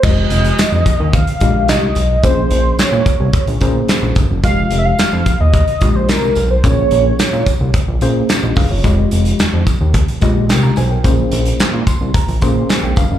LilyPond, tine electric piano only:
\new Staff \with { instrumentName = "Tine electric piano" } { \time 4/4 \key f \minor \tempo 4 = 109 << { r1 | r1 | r1 | r2. r16 <g' ees''>16 <aes' f''>16 <f' des''>16~ |
<f' des''>16 r2 r8. <bes' g''>16 bes''16 <c'' aes''>16 <bes' g''>16~ | <bes' g''>16 r4 r16 c'''8 bes''8 c'''8 aes''16 g''16 f''8 | } \\ { <aes f' g' ees''>4. r4 <aes f' g' ees''>4 r8 | <bes des' aes' c''>4. r4 <bes des' aes' c''>4 r8 | <aes f' g' ees''>4. r4 <aes f' g' ees''>4 r8 | <bes des' aes' des''>4. r4 <bes des' aes' c''>4 r8 |
<aes f' g' ees''>4. r4 <aes f' g' ees''>4 r8 | <bes des' aes' c''>4. r4 <bes des' aes' c''>4 r8 | } >> }